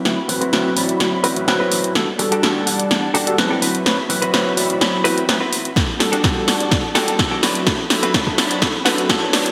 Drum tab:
HH |x-oxx-oxx-oxx-ox|x-oxx-oxx-oxx-ox|x-oxx-oxx-oxx-ox|x-oxx-oxx-oxx-ox|
SD |o---o---o---o---|o---o---o---o---|o---o---o---o---|o-o-o-o-o-o-o-o-|
BD |----------------|----------------|----------------|o---o---o---o---|

HH |x-oxx-oxx-oxx-ox|
SD |o-o-o-o-o-o-o-o-|
BD |o---oo--o---o---|